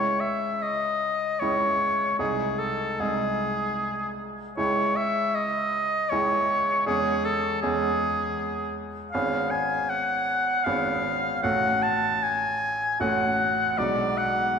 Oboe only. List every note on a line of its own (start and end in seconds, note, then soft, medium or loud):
0.00 0.21 C#5 medium
0.20 0.64 E5 medium
0.62 1.41 D#5 medium
1.40 2.18 C#5 medium
2.19 2.60 G#4 medium
2.58 3.01 A4 medium
3.00 4.19 G#4 medium
4.57 4.97 C#5 medium
4.96 5.36 E5 medium
5.35 6.11 D#5 medium
6.09 6.85 C#5 medium
6.86 7.26 G#4 medium
7.25 7.61 A4 medium
7.62 8.72 G#4 medium
9.11 9.52 F5 medium
9.51 9.91 G#5 medium
9.89 10.66 F#5 medium
10.65 11.42 F5 medium
11.43 11.84 F#5 medium
11.83 12.24 A5 medium
12.22 13.00 G#5 medium
13.00 13.79 F#5 medium
13.78 14.19 D5 medium
14.18 14.59 F#5 medium